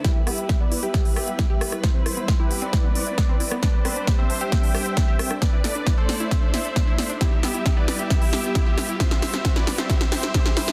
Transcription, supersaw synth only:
\new Staff \with { instrumentName = "Supersaw synth" } { \time 4/4 \key e \phrygian \tempo 4 = 134 <g' e''>8 <g' e''>8. <b' d''>8 <g' e''>2 r16 | <e' c''>8 <e' c''>8. <g' b'>8 <b' d''>2 r16 | <b' d''>8 <b' d''>8. <c'' e''>8 <e'' g''>2 r16 | <b' d''>8 <b' d''>8. <a' c''>8 <c'' e''>2 r16 |
<g' e''>8 <g' e''>8. <b' d''>8 <g' e''>2 r16 | <c'' e''>8 <c'' e''>8. <b' d''>8 <c'' e''>2 r16 | }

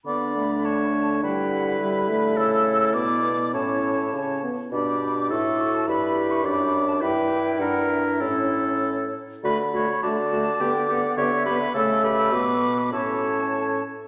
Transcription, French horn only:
\new Staff \with { instrumentName = "French horn" } { \time 2/4 \key d \major \tempo 4 = 102 b8 a4. | g4 g8 a8~ | a4 b8 b8 | cis'4 cis'8 b8 |
d'4 e'4~ | e'4 d'4 | e'4 d'4 | cis'4. r8 |
a8 a8 a8 a8 | b8 b8 b8 b8 | a4 b4 | cis'4. r8 | }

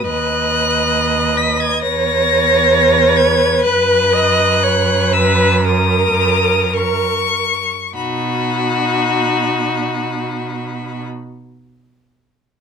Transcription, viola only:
\new Staff \with { instrumentName = "Viola" } { \time 4/4 \key b \major \tempo 4 = 57 dis''2 cis''2 | b'8 dis''8 cis''8 b'8 ais'4 ais'8 r8 | dis'1 | }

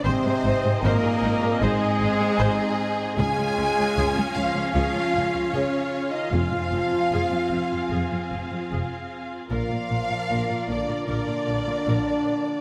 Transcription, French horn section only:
\new Staff \with { instrumentName = "French horn section" } { \time 4/4 \key f \minor \tempo 4 = 76 c'4 bes4 aes2 | aes'4. f'8 f'4 des'8. ees'16 | f'2. r4 | f'4. d'8 d'2 | }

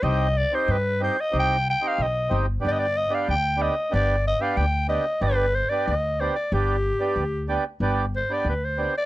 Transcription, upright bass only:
\new Staff \with { instrumentName = "Upright bass" } { \clef bass \time 2/4 \tempo 4 = 93 c,4 g,4 | c,4 b,,8 g,,8 | g,,4 d,4 | g,,4 d,4 |
g,,4 d,4 | g,,4 d,4 | g,,4 d,4 | }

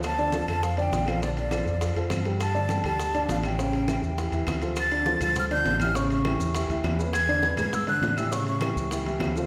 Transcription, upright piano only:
\new Staff \with { instrumentName = "Upright piano" } { \time 4/4 \key d \minor \tempo 4 = 202 <f f' a'>8 <d d' d''>8 <f f' a'>8 <f f' a'>4 <d d' d''>4 <f f' a'>8 | <d d' d''>4 <f f' a'>4 <f f' a'>8 <f f' a'>4 <g g' a'>8~ | <g g' a'>8 <d d' d''>8 <g g' a'>8 <g g' a'>4 <d d' d''>4 <e e' g'>8 | <cis cis' cis''>4 <e e' g'>4 <e e' g'>8 <e e' g'>4 <f f' a'>8 |
r8 <d d' d''>8 <f f' a'>8 <f f' a'>4 <d d' d''>4 <e e' g'>8 | <cis cis' cis''>4 <e e' g'>4 <e e' g'>8 <e e' g'>4 <gis gis' b'>8~ | <gis gis' b'>8 <d d' d''>8 <gis gis' b'>8 <gis gis' b'>4 <d d' d''>4 <e e' g'>8 | <cis cis' cis''>4 <e e' g'>4 <e e' g'>8 <e e' g'>4 <f f' a'>8 | }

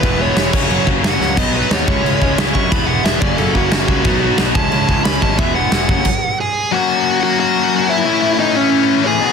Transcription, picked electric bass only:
\new Staff \with { instrumentName = "Picked electric bass" } { \clef bass \time 4/4 \key fis \mixolydian \tempo 4 = 180 e,,4 e,,8 fis,,8 fis,,8 fis,,8 fis,,8 cis,8 | b,,4 dis,8 cis,8 cis,8 cis,8 cis,8 fis,8 | e,,4 e,,8 fis,,8 fis,,8 fis,,8 fis,,8 cis,8 | b,,4 b,,8 cis,8 cis,8 cis,8 cis,8 gis,,8 |
e,,4 e,,8 fis,,8 r2 | r1 | r1 | }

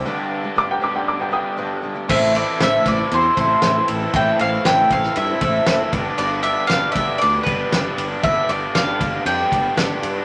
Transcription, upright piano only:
\new Staff \with { instrumentName = "Upright piano" } { \time 4/4 \key a \minor \tempo 4 = 117 r4 d'''16 g''16 d'''16 g''16 d'''16 g''16 <g'' ees'''>4 r8 | r1 | r1 | r1 |
r1 | }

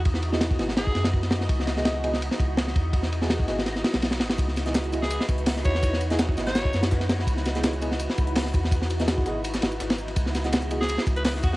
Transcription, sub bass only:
\new Staff \with { instrumentName = "Sub bass" } { \clef bass \time 4/4 \key cis \minor \tempo 4 = 166 e,4. gis,,4 fis,4. | cis,2~ cis,16 r16 cis,4 e,8~ | e,4. gis,,4 r16 b,,8. gis,,8 | cis,2~ cis,16 r16 cis,4 e,8~ |
e,4. gis,,4 fis,4. | cis,2~ cis,16 r16 cis,4 e,8~ | e,4. gis,,4 gis,,8 gis,,4 | cis,2~ cis,16 r16 cis,4 e,8 | }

